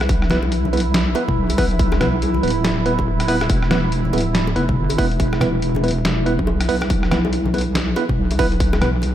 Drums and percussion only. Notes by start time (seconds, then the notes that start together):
0.01 cross-stick, closed hi-hat, high bongo
0.09 kick, closed hi-hat
0.22 cross-stick
0.30 cross-stick, snare, closed hi-hat, high conga
0.42 high bongo
0.52 closed hi-hat
0.65 high conga
0.73 closed hi-hat, high bongo
0.77 closed hi-hat
0.80 closed hi-hat
0.94 snare, closed hi-hat
1.15 closed hi-hat, high bongo
1.28 kick, low conga
1.50 closed hi-hat, high bongo
1.58 kick, open hi-hat
1.71 closed hi-hat
1.79 kick, closed hi-hat
1.92 cross-stick, high bongo
2.01 cross-stick, closed hi-hat, high conga, low conga
2.22 closed hi-hat, high bongo
2.34 high conga
2.43 closed hi-hat
2.48 closed hi-hat
2.50 closed hi-hat
2.64 snare, closed hi-hat, high bongo
2.86 closed hi-hat
2.99 kick, high bongo
3.20 cross-stick, closed hi-hat
3.28 open hi-hat
3.41 cross-stick, closed hi-hat, high bongo
3.50 kick, closed hi-hat
3.63 cross-stick
3.71 cross-stick, snare, closed hi-hat, high bongo, high conga
3.92 closed hi-hat
4.05 high conga
4.13 closed hi-hat, high bongo
4.18 closed hi-hat
4.21 closed hi-hat
4.35 snare, closed hi-hat
4.47 high bongo
4.56 closed hi-hat
4.69 kick, low conga
4.90 closed hi-hat, high bongo
4.98 kick, open hi-hat
5.12 closed hi-hat
5.20 kick, closed hi-hat
5.33 cross-stick, high bongo
5.41 cross-stick, closed hi-hat, high conga, low conga
5.62 closed hi-hat
5.75 high bongo, high conga
5.84 closed hi-hat
5.88 closed hi-hat
5.91 closed hi-hat
6.05 snare, closed hi-hat, high bongo
6.26 closed hi-hat
6.39 kick
6.47 high bongo
6.61 cross-stick, closed hi-hat
6.69 open hi-hat
6.81 cross-stick, closed hi-hat, high bongo
6.90 kick, closed hi-hat
7.03 cross-stick
7.11 cross-stick, snare, closed hi-hat, high conga
7.25 high bongo
7.33 closed hi-hat
7.46 high conga
7.54 closed hi-hat, high bongo
7.58 closed hi-hat
7.61 closed hi-hat
7.75 snare, closed hi-hat
7.96 closed hi-hat, high bongo
8.09 kick, low conga
8.31 closed hi-hat, high bongo
8.39 kick, open hi-hat
8.52 closed hi-hat
8.60 kick, closed hi-hat
8.73 cross-stick, high bongo
8.81 cross-stick, closed hi-hat, high conga, low conga
9.02 closed hi-hat, high bongo